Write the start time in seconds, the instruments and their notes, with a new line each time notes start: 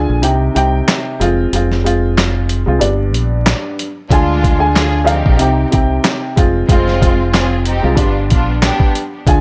Already playing: upright piano D3 D4 F4 G#4 G#5
0.09 fingered electric bass A#1
0.22 fingered electric bass C2, upright piano C3 C4 D#4 G4 G5, closed hi-hat
0.55 fingered electric bass C2, upright piano C3 C4 D#4 G4 G5, closed hi-hat
0.88 snare, clap, closed hi-hat
1.20 fingered electric bass F1, upright piano G#3 C4 F4, closed hi-hat
1.52 fingered electric bass F1, upright piano G#3 C4 F4, closed hi-hat
1.72 snare
1.84 upright piano G#3 C4 F4, closed hi-hat
2.18 snare, clap, closed hi-hat
2.49 closed hi-hat
2.66 fingered electric bass C2, upright piano G#3 C4 F4
2.79 fingered electric bass G1, upright piano G2 G3 B3 D4 D5, closed hi-hat
3.14 fingered electric bass A#1, closed hi-hat
3.46 snare, clap, closed hi-hat
3.79 closed hi-hat
4.10 fingered electric bass D2, upright piano D3 D4 F4 G#4 G#5, string section G#3 D4 F4, kick, closed hi-hat
4.44 kick, closed hi-hat
4.58 upright piano D3 D4 F4 G#4 G#5
4.76 string section D4 F4 G#4, snare, clap, closed hi-hat
5.04 upright piano F3 D4 F4 G#4 F5, closed hi-hat
5.08 string section C4 D#4 G4
5.26 fingered electric bass A#1, kick
5.39 fingered electric bass C2, upright piano C3 C4 D#4 G4 G5, closed hi-hat
5.71 fingered electric bass C2, upright piano C3 C4 D#4 G4 G5, kick, closed hi-hat
6.04 snare, clap, closed hi-hat
6.36 fingered electric bass F1, upright piano G#3 C4 F4, kick, closed hi-hat
6.69 fingered electric bass F1, string section G#3 C4 F4, upright piano G#3 C4 F4, kick, closed hi-hat
6.88 snare
7.00 upright piano G#3 C4 F4, kick, closed hi-hat
7.33 string section C4 F4 G#4, snare, clap, closed hi-hat
7.65 string section C4 D#4 G4, closed hi-hat
7.82 fingered electric bass C2, upright piano G#3 C4 F4
7.95 fingered electric bass G1, upright piano G2 G3 B3 D4 D5, string section B3 D4 F4, kick, closed hi-hat
8.30 fingered electric bass A#1, string section B3 D4 F4, kick, closed hi-hat
8.62 string section B3 D4 G4, snare, clap, closed hi-hat
8.80 kick
8.95 closed hi-hat
9.26 fingered electric bass D2, upright piano D3 D4 F4 G#4 G#5, kick, closed hi-hat